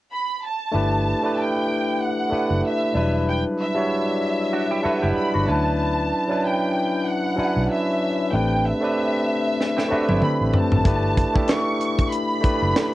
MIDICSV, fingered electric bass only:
0, 0, Header, 1, 3, 480
1, 0, Start_track
1, 0, Tempo, 632244
1, 561, Time_signature, 4, 2, 24, 8
1, 9825, End_track
2, 0, Start_track
2, 0, Title_t, "Fingered electric bass"
2, 0, Program_c, 0, 33
2, 564, Note_on_c, 0, 31, 86
2, 854, Note_off_c, 0, 31, 0
2, 1901, Note_on_c, 0, 30, 71
2, 1978, Note_off_c, 0, 30, 0
2, 2239, Note_on_c, 0, 28, 72
2, 2608, Note_off_c, 0, 28, 0
2, 3822, Note_on_c, 0, 30, 83
2, 3899, Note_off_c, 0, 30, 0
2, 4063, Note_on_c, 0, 31, 79
2, 4139, Note_off_c, 0, 31, 0
2, 4162, Note_on_c, 0, 38, 70
2, 4637, Note_off_c, 0, 38, 0
2, 5744, Note_on_c, 0, 35, 75
2, 5820, Note_off_c, 0, 35, 0
2, 6325, Note_on_c, 0, 33, 87
2, 6615, Note_off_c, 0, 33, 0
2, 7663, Note_on_c, 0, 31, 77
2, 7740, Note_off_c, 0, 31, 0
2, 7903, Note_on_c, 0, 33, 67
2, 7979, Note_off_c, 0, 33, 0
2, 8145, Note_on_c, 0, 32, 72
2, 8221, Note_off_c, 0, 32, 0
2, 8241, Note_on_c, 0, 31, 92
2, 8533, Note_off_c, 0, 31, 0
2, 9584, Note_on_c, 0, 30, 70
2, 9661, Note_off_c, 0, 30, 0
2, 9825, End_track
3, 0, Start_track
3, 0, Title_t, "Muted fingered electric bass strokes"
3, 1761, Note_on_c, 9, 29, 38
3, 1837, Note_off_c, 9, 29, 0
3, 3683, Note_on_c, 9, 29, 43
3, 3759, Note_off_c, 9, 29, 0
3, 3926, Note_on_c, 9, 29, 40
3, 4002, Note_off_c, 9, 29, 0
3, 5604, Note_on_c, 9, 29, 39
3, 5680, Note_off_c, 9, 29, 0
3, 7531, Note_on_c, 9, 29, 36
3, 7607, Note_off_c, 9, 29, 0
3, 7766, Note_on_c, 9, 29, 40
3, 7842, Note_off_c, 9, 29, 0
3, 9447, Note_on_c, 9, 29, 41
3, 9523, Note_off_c, 9, 29, 0
3, 9825, End_track
0, 0, End_of_file